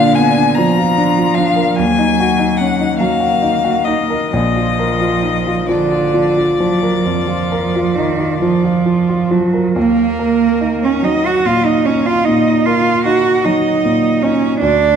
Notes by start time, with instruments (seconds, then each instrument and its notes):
Already playing: grand piano A#2 D4 F4, cello D3, violin F5
0.15 grand piano B3, violin G#5
0.37 grand piano D4
0.55 cello F3, grand piano F3, violin A#5
0.79 grand piano F4
0.98 grand piano D4
1.19 grand piano F4
1.34 grand piano D4, violin F5
1.56 grand piano A#4
1.76 grand piano D#2, cello F#3, violin G#5
1.99 grand piano D#4
2.20 grand piano F#4
2.39 grand piano D#4
2.57 grand piano C#4, violin F#5
2.81 grand piano D#4
2.98 grand piano F#3, cello A#3, violin F5
3.20 grand piano F#4
3.42 grand piano D#4
3.64 grand piano F#4
3.85 grand piano D#4, violin D#5
4.10 grand piano A#4
4.31 grand piano A#1, cello F3, violin D#5
4.56 grand piano F4
4.79 grand piano A#4
5.01 grand piano F4
5.22 grand piano D#4
5.47 grand piano F4
5.66 cello D3, grand piano F3, violin D5
5.92 grand piano F4
6.14 grand piano F3
6.37 grand piano F4
6.58 grand piano F3, cello F#3
6.83 grand piano A#4
7.03 grand piano F2, cello F3
7.28 grand piano F4
7.52 grand piano A#4
7.76 grand piano F4
7.95 cello D#3, grand piano D#4
8.20 grand piano F4
8.40 cello F3, grand piano F3
8.64 grand piano F4
8.86 grand piano F3
9.09 grand piano F4
9.31 grand piano F3, cello F#3
9.53 grand piano A#4
9.76 grand piano D#2, cello A#3, violin A#4
10.19 grand piano A#4
10.61 grand piano D#4
10.83 cello C#4, violin C#5
11.03 grand piano F#3, cello D#4, violin D#5
11.26 cello F#4, violin F#5
11.45 grand piano A#2, cello F4, violin F5
11.65 cello D#4, violin D#5
11.85 cello C#4, grand piano D#4, violin C#5
12.05 cello F4, violin F5
12.24 grand piano A#2, cello D#4, violin D#5
12.65 cello F4, grand piano A#4, violin F5
13.04 grand piano D#4, cello F#4, violin F#5
13.44 grand piano F#3, cello D#4, violin D#5
13.85 grand piano A#2
14.22 cello C#4, grand piano D#4, violin C#5
14.60 grand piano D2, cello D4, violin D5